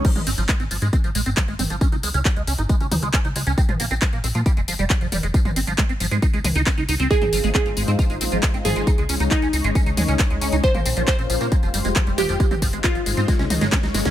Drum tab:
CC |x---------------|----------------|----------------|----------------|
HH |xxoxxxoxxxoxxxox|xxoxxxoxxxoxxxox|xxoxxxoxxxoxxxox|xxoxxxoxxxoxxxox|
TB |xxxxxxxxxxxxxxxx|xxxxxxxxxxxxxxxx|xxxxxxxxxxxxxxxx|xxxxxxxxxxxxxxxx|
CP |----x-------x---|----x-------x---|----x-------x---|----x-------x---|
SD |----------------|----------------|----------------|----------------|
T2 |-o------------o-|----------o-----|-o------------o-|-o--------o-----|
BD |o---o---o---o---|o---o---o---o---|o---o---o---o---|o---o---o---o---|

CC |----------------|----------------|----------------|----------------|
HH |xxoxxxoxxxoxxxox|xxoxxxoxxxoxxxox|xxoxxxoxxxoxxxox|xxoxxxoxxxoxxxox|
TB |xxxxxxxxxxxxxxxx|xxxxxxxxxxxxxxxx|xxxxxxxxxxxxxxxx|xxxxxxxxxxxxxxxx|
CP |----x-------x---|----x-------x---|----x-------x---|----x-------x---|
SD |----------------|----------------|----------------|--------oo-ooooo|
T2 |-o------------o-|----------o-----|-o------------o-|-o--------o-o---|
BD |o---o---o---o---|o---o---o---o---|o---o---o---o---|o-o-o---o---o---|